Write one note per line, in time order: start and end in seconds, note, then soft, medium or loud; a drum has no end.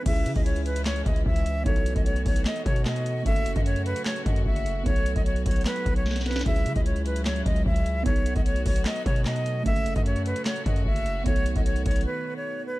0.03 0.27 C#2 loud
0.03 3.23 E3 medium
0.03 1.64 G#3 medium
0.03 1.61 C#4 medium
0.03 1.64 C#4 medium
0.03 1.64 E4 medium
0.03 1.63 E4 medium
0.03 0.34 E5 loud
0.03 kick loud
0.03 closed hi-hat medium
0.03 crash loud
0.09 1.64 G#4 medium
0.16 closed hi-hat medium
0.26 0.35 C#3 loud
0.26 closed hi-hat medium
0.36 1.03 C#2 loud
0.36 0.44 D#5 medium
0.36 kick medium
0.36 closed hi-hat medium
0.45 0.62 C#5 medium
0.45 closed hi-hat medium
0.56 closed hi-hat medium
0.66 0.82 B4 medium
0.66 closed hi-hat medium
0.76 closed hi-hat medium
0.85 1.02 C#5 medium
0.85 snare loud
0.85 clap loud
0.85 closed hi-hat medium
0.96 closed hi-hat medium
1.06 1.25 C#2 loud
1.06 1.22 D#5 medium
1.06 kick medium
1.06 closed hi-hat medium
1.16 closed hi-hat medium
1.26 1.64 C#2 loud
1.26 1.64 E5 medium
1.26 kick medium
1.36 closed hi-hat medium
1.46 closed hi-hat medium
1.63 1.95 B1 loud
1.63 3.24 A3 medium
1.63 3.21 B3 medium
1.63 3.24 B3 medium
1.63 3.22 D#4 medium
1.63 6.42 F#4 medium
1.63 3.23 F#4 medium
1.63 1.94 C#5 loud
1.63 kick loud
1.63 closed hi-hat medium
1.69 3.24 A4 medium
1.76 closed hi-hat medium
1.86 closed hi-hat loud
1.96 2.25 B1 loud
1.96 2.04 D#5 medium
1.96 kick medium
1.96 closed hi-hat medium
2.06 2.22 C#5 medium
2.06 closed hi-hat medium
2.16 closed hi-hat medium
2.26 2.45 B1 loud
2.26 2.42 C#5 medium
2.26 kick medium
2.26 open hi-hat medium
2.36 closed hi-hat medium
2.45 2.62 D#5 medium
2.45 snare loud
2.45 clap loud
2.45 closed hi-hat medium
2.56 closed hi-hat medium
2.66 3.23 B2 loud
2.66 2.82 C#5 medium
2.66 kick loud
2.66 closed hi-hat medium
2.76 closed hi-hat medium
2.85 3.23 D#5 medium
2.85 snare loud
2.85 clap medium
2.96 closed hi-hat medium
3.06 closed hi-hat medium
3.23 3.55 F#1 loud
3.23 4.84 C#3 medium
3.23 4.84 F#3 medium
3.23 4.81 A3 medium
3.23 6.43 A3 medium
3.23 4.82 C#4 medium
3.23 4.83 F#4 medium
3.23 3.54 E5 loud
3.23 kick loud
3.23 closed hi-hat medium
3.28 4.84 A4 medium
3.36 closed hi-hat medium
3.46 closed hi-hat loud
3.56 3.94 F#2 loud
3.56 3.64 D#5 medium
3.56 kick medium
3.56 closed hi-hat medium
3.66 3.82 C#5 medium
3.66 closed hi-hat medium
3.76 closed hi-hat medium
3.86 4.02 B4 medium
3.86 closed hi-hat medium
3.96 closed hi-hat medium
4.05 4.22 C#5 medium
4.05 snare loud
4.05 clap loud
4.05 closed hi-hat medium
4.16 closed hi-hat medium
4.26 4.45 F#2 loud
4.26 4.42 D#5 medium
4.26 kick loud
4.26 closed hi-hat medium
4.36 closed hi-hat medium
4.46 4.84 F#1 loud
4.46 4.84 E5 medium
4.46 kick medium
4.56 closed hi-hat medium
4.66 closed hi-hat medium
4.83 5.15 B1 loud
4.83 9.62 F#3 medium
4.83 6.41 B3 medium
4.83 6.44 B3 medium
4.83 6.42 D#4 medium
4.83 6.43 F#4 medium
4.83 5.14 C#5 loud
4.83 kick loud
4.83 closed hi-hat medium
4.89 6.44 A4 medium
4.96 closed hi-hat medium
5.06 closed hi-hat medium
5.16 5.45 B1 loud
5.16 5.24 D#5 medium
5.16 kick medium
5.16 closed hi-hat medium
5.26 5.43 C#5 medium
5.26 closed hi-hat medium
5.36 closed hi-hat medium
5.46 5.65 B1 loud
5.46 5.63 C#5 medium
5.46 kick medium
5.46 closed hi-hat medium
5.46 open hi-hat medium
5.51 closed hi-hat medium
5.56 closed hi-hat medium
5.61 closed hi-hat soft
5.65 5.94 B4 loud
5.65 snare loud
5.65 clap loud
5.65 closed hi-hat medium
5.76 closed hi-hat medium
5.86 6.43 B1 loud
5.86 kick medium
5.86 closed hi-hat medium
5.96 6.24 C#5 medium
5.96 closed hi-hat medium
6.06 snare medium
6.11 snare medium
6.16 snare medium
6.16 closed hi-hat medium
6.21 snare medium
6.26 6.42 B4 medium
6.26 snare loud
6.26 closed hi-hat medium
6.31 snare medium
6.31 closed hi-hat medium
6.36 snare loud
6.36 closed hi-hat medium
6.41 8.01 C#4 medium
6.41 snare loud
6.46 6.67 C#2 loud
6.46 8.04 G#3 medium
6.46 8.04 C#4 medium
6.46 8.04 E4 medium
6.46 8.03 E4 medium
6.46 8.04 G#4 medium
6.46 6.74 E5 loud
6.46 kick loud
6.46 closed hi-hat medium
6.56 closed hi-hat medium
6.66 6.75 C#3 medium
6.66 closed hi-hat loud
6.76 7.43 C#2 loud
6.76 6.84 D#5 medium
6.76 kick medium
6.76 closed hi-hat medium
6.86 7.02 C#5 medium
6.86 closed hi-hat medium
6.96 closed hi-hat medium
7.06 7.22 B4 medium
7.06 closed hi-hat medium
7.16 closed hi-hat medium
7.25 7.42 C#5 medium
7.25 snare loud
7.25 clap loud
7.25 closed hi-hat medium
7.36 closed hi-hat medium
7.46 7.65 C#2 loud
7.46 7.62 D#5 medium
7.46 kick loud
7.46 closed hi-hat medium
7.56 closed hi-hat medium
7.66 8.04 C#2 loud
7.66 8.04 E5 medium
7.66 kick medium
7.76 closed hi-hat medium
7.86 closed hi-hat medium
8.03 8.35 B1 loud
8.03 12.79 A3 medium
8.03 9.61 B3 medium
8.03 9.64 B3 medium
8.03 9.62 D#4 medium
8.03 9.64 F#4 medium
8.03 9.63 F#4 medium
8.03 8.34 C#5 loud
8.03 kick loud
8.03 closed hi-hat medium
8.09 9.64 A4 medium
8.16 closed hi-hat medium
8.26 closed hi-hat loud
8.36 8.65 B1 loud
8.36 8.44 D#5 medium
8.36 kick medium
8.36 closed hi-hat medium
8.46 8.62 C#5 medium
8.46 closed hi-hat medium
8.56 closed hi-hat medium
8.66 8.85 B1 loud
8.66 8.83 C#5 medium
8.66 kick loud
8.66 open hi-hat medium
8.76 closed hi-hat medium
8.85 9.02 D#5 loud
8.85 snare loud
8.85 clap loud
8.85 closed hi-hat medium
8.96 closed hi-hat medium
9.06 9.63 B2 loud
9.06 9.22 C#5 medium
9.06 kick medium
9.06 closed hi-hat medium
9.16 closed hi-hat soft
9.25 9.64 D#5 medium
9.25 snare loud
9.25 clap medium
9.36 closed hi-hat medium
9.46 closed hi-hat medium
9.63 9.95 F#1 loud
9.63 11.24 C#3 medium
9.63 11.24 F#3 medium
9.63 11.21 A3 medium
9.63 11.22 C#4 medium
9.63 12.79 F#4 medium
9.63 11.23 F#4 medium
9.63 9.94 E5 loud
9.63 kick loud
9.63 closed hi-hat medium
9.69 11.24 A4 medium
9.76 closed hi-hat medium
9.86 closed hi-hat medium
9.96 10.34 F#2 loud
9.96 10.04 D#5 medium
9.96 kick medium
9.96 closed hi-hat medium
10.06 10.22 C#5 medium
10.06 closed hi-hat medium
10.16 closed hi-hat medium
10.26 10.42 B4 medium
10.26 closed hi-hat medium
10.36 closed hi-hat medium
10.45 10.63 C#5 medium
10.45 snare loud
10.45 clap loud
10.45 closed hi-hat medium
10.56 closed hi-hat medium
10.66 10.85 F#2 loud
10.66 10.82 D#5 medium
10.66 kick medium
10.66 closed hi-hat medium
10.76 closed hi-hat medium
10.86 11.24 F#1 loud
10.86 11.24 E5 loud
10.86 kick medium
10.96 closed hi-hat medium
11.06 closed hi-hat medium
11.23 11.55 B1 loud
11.23 12.79 D#3 medium
11.23 12.79 B3 medium
11.23 12.79 D#4 medium
11.23 12.79 F#4 medium
11.23 11.54 C#5 loud
11.23 kick loud
11.23 closed hi-hat medium
11.29 12.79 A4 medium
11.36 closed hi-hat medium
11.46 closed hi-hat loud
11.56 11.85 B1 loud
11.56 11.64 D#5 medium
11.56 kick medium
11.56 closed hi-hat medium
11.66 11.82 C#5 medium
11.66 closed hi-hat medium
11.76 closed hi-hat medium
11.86 12.05 B1 loud
11.86 12.02 C#5 medium
11.86 kick medium
11.86 closed hi-hat medium
11.86 open hi-hat medium
11.91 closed hi-hat medium
11.96 closed hi-hat medium
12.01 closed hi-hat soft
12.06 12.34 B4 medium
12.36 12.64 C#5 medium
12.66 12.79 B4 medium